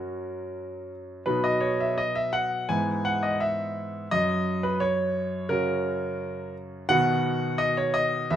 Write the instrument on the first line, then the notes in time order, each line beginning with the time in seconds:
grand piano
Already playing: F#2 F#3 C#4 F#4 A#4
1.26 B2 F#3 B3 D#4 B4
1.44 D#5
1.61 C#5
1.80 E5
1.98 D#5
2.15 E5
2.33 F#5
2.69 G#2 E3 B3 E4 G#5
3.05 F#5
3.23 D#5
3.40 E5
4.11 F#2 D#5
4.63 B4
4.80 C#5
5.49 C#3 C#4 F#4 A#4
6.89 B2 D#3 B3 F#4 F#5
7.58 D#5
7.77 C#5
7.94 D#5
8.30 E2 E3 B3 G#4 E5